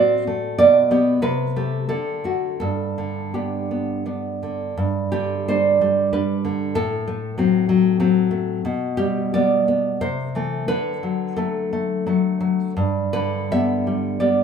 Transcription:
nylon-string guitar
Already playing: A2 C4 F#4 D5
0.27 A3
0.58 B2 D5
0.91 B3 G4
1.22 C3 B4
1.56 A3 G4
1.89 D3 A4
2.24 A3 F#4
2.60 G2 A4
2.98 D3
3.34 B3 D4 G4
3.71 B3
4.06 B3 D4
4.43 D3
4.78 G2
5.12 D3 G4
5.48 G3 D4 C5
5.81 G3
6.13 G3 D4 B4
6.45 D3
6.75 A2 A4
7.08 A3
7.38 F#3 C4
7.69 F#3
8.00 F#3 C4
8.31 A3
8.65 B2
8.97 G3 G4
9.34 G3 B3 D5
9.68 B3
10.01 C3 C5
10.35 E3 A3
10.68 D3 B4
11.03 F#3
11.36 F#3 A3 A4
11.73 A3
12.06 F#3 A3
12.40 F#3
12.77 G2
13.13 D3 B4
13.51 G3 B3 E5
13.87 G3
14.20 G3 B3 D5

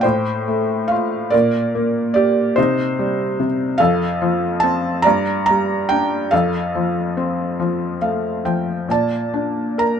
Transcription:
felt piano
0.01 A2 C5 G5
0.48 A3
0.88 F4 F5
1.30 A#2 A#4 D5
1.75 A#3
2.14 G4 D5
2.56 C3 D#4 C5
2.99 G3
3.40 C3
3.78 F2 A4 F5
4.22 F3
4.60 C4 A5
5.02 D5 A#5
5.07 G2
5.46 A#5
5.50 G3
5.89 D4 G5
6.31 F2 A4 F5
6.75 F3
7.17 C4
7.60 F3
8.02 A3 F5
8.45 F3 G5
8.89 A#2 D5 A5
9.34 D4
9.78 A#4 A#5

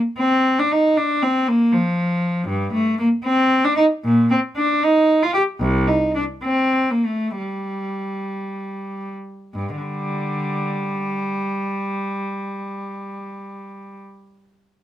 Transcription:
cello
0.19 C4
0.59 D4
0.72 D#4
0.97 D4
1.23 C4
1.48 A#3
1.73 F3
2.48 G2
2.74 A3
2.99 A#3
3.25 C4
3.64 D4
3.76 D#4
4.04 A#2
4.31 C4
4.56 D4
4.83 D#4
5.23 F4
5.34 G4
5.60 C2
5.87 D#4
6.15 D4
6.44 C4
6.91 A#3
7.06 A3
7.38 G3
9.54 G2
9.77 D3 G3

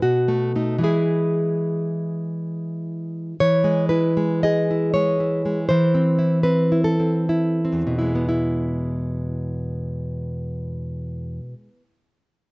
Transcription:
nylon-string guitar
0.02 B2 F#4
0.28 A3
0.56 A3 D#4
0.79 E3 G#3
0.83 E4 G#4
3.40 E3 C#5
3.64 G#3
3.89 E4 B4
4.17 G#3
4.43 G#4 D#5
4.71 E4
4.94 G#3 C#5
5.20 E4
5.45 G#3
5.69 E3 C5
5.95 C4
6.19 E4
6.43 C4 B4
6.72 E4
6.84 A4
7.00 C4
7.29 E4
7.65 C4
7.72 E2
7.87 B2
7.99 G#3 E4
8.15 B3
8.29 E4

